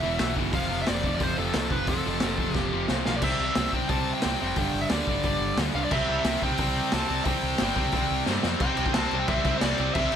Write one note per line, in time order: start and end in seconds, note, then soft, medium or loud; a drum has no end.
0.00 0.16 E1 medium
0.00 0.18 E2 loud
0.00 0.18 B2 loud
0.00 0.19 E3 loud
0.00 0.34 E5 loud
0.19 0.33 B1 medium
0.19 0.36 E2 medium
0.19 0.36 B2 medium
0.19 0.35 E3 loud
0.19 snare loud
0.19 open hi-hat medium
0.36 0.53 G1 medium
0.36 0.52 E2 medium
0.36 0.52 B2 medium
0.36 0.52 E3 medium
0.36 kick medium
0.52 0.66 F1 medium
0.52 0.69 F2 medium
0.52 0.67 C3 medium
0.52 0.68 F3 loud
0.52 0.80 F5 loud
0.52 kick loud
0.52 open hi-hat medium
0.68 0.84 F1 medium
0.68 0.85 F2 medium
0.68 0.85 C3 medium
0.68 0.86 F3 medium
0.82 1.02 F2 medium
0.82 0.88 E5 medium
0.86 1.01 F1 loud
0.86 1.02 C3 medium
0.86 1.02 F3 medium
0.86 1.14 D5 medium
0.86 snare loud
0.86 open hi-hat medium
1.02 1.17 F1 medium
1.02 1.17 F2 medium
1.02 1.18 C3 medium
1.02 1.18 F3 loud
1.02 kick medium
1.15 1.36 F2 medium
1.15 1.36 C3 medium
1.15 1.35 F3 medium
1.15 1.22 D5 medium
1.20 1.34 F1 medium
1.20 1.38 C3 medium
1.20 1.37 F3 medium
1.20 1.38 C5 medium
1.20 kick loud
1.20 open hi-hat medium
1.36 1.51 F1 medium
1.36 1.51 F2 loud
1.36 1.52 C3 loud
1.36 1.52 F3 loud
1.36 1.71 A4 medium
1.52 1.68 C2 medium
1.52 1.70 F2 medium
1.52 1.69 C3 medium
1.52 1.69 F3 medium
1.52 snare loud
1.52 open hi-hat medium
1.57 1.71 F3 loud
1.70 1.84 F1 medium
1.70 1.86 F2 medium
1.70 1.86 C3 medium
1.70 1.87 F3 medium
1.70 1.89 B4 medium
1.70 kick medium
1.87 2.01 F1 medium
1.87 2.04 F2 medium
1.87 2.04 C3 loud
1.87 2.04 F3 medium
1.87 2.57 A4 medium
1.87 kick loud
1.87 open hi-hat medium
2.05 2.19 F1 medium
2.05 2.22 F2 medium
2.05 2.22 C3 medium
2.05 2.22 F3 medium
2.20 2.35 F1 medium
2.20 2.38 F2 medium
2.20 2.39 C3 medium
2.20 2.37 F3 medium
2.20 snare loud
2.20 open hi-hat medium
2.38 2.51 F1 medium
2.38 2.54 F2 medium
2.38 2.54 C3 medium
2.38 2.55 F3 medium
2.38 kick medium
2.54 2.68 F1 medium
2.54 2.72 F2 medium
2.54 2.71 C3 medium
2.54 2.71 F3 loud
2.54 2.85 G4 medium
2.54 kick loud
2.54 snare medium
2.72 2.85 F1 medium
2.72 2.89 F2 medium
2.72 2.89 C3 loud
2.72 2.90 F3 loud
2.88 3.02 C2 medium
2.88 3.06 F2 medium
2.88 3.05 C3 medium
2.88 3.05 F3 medium
2.88 snare medium
3.05 3.19 B1 medium
3.05 3.22 F2 medium
3.05 3.20 C3 medium
3.05 3.22 F3 medium
3.05 3.16 F5 medium
3.05 snare medium
3.16 3.23 D5 medium
3.22 3.32 C2 medium
3.22 3.54 C3 medium
3.22 3.56 G3 medium
3.22 3.55 C4 loud
3.22 3.73 E5 medium
3.22 kick loud
3.22 crash loud
3.39 3.50 C2 medium
3.55 3.67 C2 loud
3.55 3.71 C3 medium
3.55 3.72 G3 medium
3.55 3.71 C4 medium
3.55 snare loud
3.55 open hi-hat medium
3.72 3.83 C2 medium
3.72 3.87 C3 medium
3.72 3.89 G3 medium
3.72 3.88 C4 medium
3.72 3.89 G5 medium
3.72 kick medium
3.89 4.10 C2 medium
3.89 4.21 C3 loud
3.89 4.22 G3 loud
3.89 4.22 C4 loud
3.89 4.13 A5 loud
3.89 kick loud
3.89 open hi-hat medium
4.14 4.46 G5 medium
4.22 4.35 C2 medium
4.22 4.39 C3 medium
4.22 4.40 G3 medium
4.22 4.39 C4 medium
4.22 snare loud
4.22 open hi-hat medium
4.40 4.51 F1 medium
4.40 4.56 C3 medium
4.40 4.58 G3 medium
4.40 4.56 C4 medium
4.47 4.79 G5 medium
4.56 4.67 G1 medium
4.56 4.89 G2 medium
4.56 4.90 D3 medium
4.56 4.91 G3 medium
4.56 kick loud
4.56 open hi-hat medium
4.74 4.84 G1 medium
4.81 4.89 E5 medium
4.89 5.01 D2 medium
4.89 5.07 G2 medium
4.89 5.06 D3 loud
4.89 5.06 G3 medium
4.89 5.57 D5 medium
4.89 snare loud
4.89 open hi-hat medium
5.07 5.18 G1 medium
5.07 5.23 G2 medium
5.07 5.22 D3 medium
5.07 5.23 G3 medium
5.07 kick medium
5.23 5.34 G1 loud
5.23 5.57 G2 medium
5.23 5.57 D3 loud
5.23 5.59 G3 medium
5.23 kick loud
5.23 open hi-hat medium
5.40 5.51 G1 medium
5.57 5.67 D2 medium
5.57 5.75 G2 medium
5.57 5.75 D3 medium
5.57 5.75 G3 medium
5.57 snare loud
5.57 open hi-hat medium
5.74 5.84 C2 medium
5.74 5.91 G2 medium
5.74 5.90 D3 medium
5.74 5.91 G3 medium
5.74 5.84 F5 loud
5.84 5.92 D5 medium
5.90 6.02 C2 medium
5.90 6.25 C3 medium
5.90 6.26 G3 medium
5.90 6.26 C4 medium
5.90 6.44 E5 loud
5.90 kick loud
5.90 crash loud
6.08 6.19 C2 medium
6.24 6.35 C2 loud
6.24 6.43 C3 medium
6.24 6.43 G3 medium
6.24 6.42 C4 medium
6.24 snare loud
6.24 open hi-hat medium
6.42 6.53 C2 medium
6.42 6.58 C3 medium
6.42 6.59 G3 medium
6.42 6.59 C4 medium
6.42 6.58 G5 medium
6.42 kick medium
6.58 6.80 C2 medium
6.58 6.92 C3 loud
6.58 6.92 G3 loud
6.58 6.93 C4 loud
6.58 6.93 G5 medium
6.58 kick loud
6.58 open hi-hat medium
6.92 7.03 C2 medium
6.92 7.09 C3 medium
6.92 7.09 G3 loud
6.92 7.08 C4 medium
6.92 7.25 A5 loud
6.92 snare loud
6.92 open hi-hat medium
7.09 7.20 C2 medium
7.09 7.24 C3 medium
7.09 7.25 G3 medium
7.09 7.25 C4 medium
7.25 7.36 C2 loud
7.25 7.57 C3 medium
7.25 7.57 G3 loud
7.25 7.58 C4 loud
7.25 8.23 G5 medium
7.25 kick loud
7.25 open hi-hat medium
7.43 7.53 C2 medium
7.58 7.71 G1 loud
7.58 7.76 C3 medium
7.58 7.75 G3 loud
7.58 7.74 C4 loud
7.58 snare loud
7.58 open hi-hat medium
7.76 7.87 C2 medium
7.76 7.91 C3 medium
7.76 7.92 G3 medium
7.76 7.92 C4 medium
7.76 kick medium
7.92 8.03 C2 medium
7.92 8.25 C3 medium
7.92 8.25 G3 loud
7.92 8.26 C4 medium
7.92 kick loud
7.92 open hi-hat medium
8.11 8.21 C2 medium
8.26 8.38 G2 medium
8.26 8.43 C3 medium
8.26 8.43 G3 medium
8.26 8.42 C4 loud
8.26 snare medium
8.43 8.54 F2 medium
8.43 8.59 C3 medium
8.43 8.59 G3 medium
8.43 8.59 C4 medium
8.43 snare medium
8.60 8.71 C2 loud
8.60 8.77 C3 medium
8.60 8.76 G3 loud
8.60 8.76 C4 loud
8.60 8.94 G5 loud
8.60 kick loud
8.60 crash loud
8.76 8.89 C2 medium
8.76 8.94 C3 medium
8.76 8.95 G3 medium
8.76 8.95 C4 medium
8.76 crash medium
8.86 kick medium
8.94 9.06 C2 medium
8.94 9.11 C3 medium
8.94 9.11 G3 medium
8.94 9.10 C4 loud
8.94 9.19 A5 loud
8.94 snare loud
8.94 crash loud
9.10 9.22 C2 medium
9.10 9.27 C3 medium
9.10 9.28 G3 medium
9.10 9.29 C4 medium
9.10 crash medium
9.20 9.28 G5 loud
9.28 9.39 C2 medium
9.28 9.45 C3 medium
9.28 9.44 G3 medium
9.28 9.45 C4 medium
9.28 9.55 E5 loud
9.28 kick loud
9.28 crash medium
9.44 9.56 C2 medium
9.44 9.61 C3 loud
9.44 9.61 G3 loud
9.44 9.62 C4 loud
9.44 kick loud
9.44 crash medium
9.58 9.63 C5 medium
9.58 9.93 D5 medium
9.58 snare loud
9.58 crash medium
9.62 9.73 C2 loud
9.62 9.79 C3 medium
9.62 9.78 G3 loud
9.62 9.78 C4 loud
9.78 9.89 C2 medium
9.78 9.93 C3 medium
9.78 9.94 G3 medium
9.78 9.95 C4 medium
9.78 crash medium
9.94 10.06 C2 loud
9.94 10.11 C3 medium
9.94 10.11 G3 loud
9.94 10.11 C4 loud
9.94 10.16 E5 medium
9.94 kick loud
9.94 crash loud
10.12 10.16 C2 medium
10.12 10.16 C3 medium
10.12 10.16 G3 medium
10.12 10.16 C4 loud
10.12 crash medium